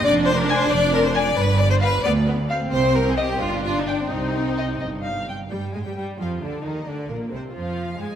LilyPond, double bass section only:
\new Staff \with { instrumentName = "Double bass section" } { \clef bass \time 6/8 \key c \minor \tempo 4. = 89 f,,4. f,,4. | g,,4. d,4. | c,4. g,,4. | c,4. g,,4. |
g,8 aes,16 g,16 g,8 f,8 d,8 ees,8 | d,8 bes,,8 c,8 f,4 aes,8 | }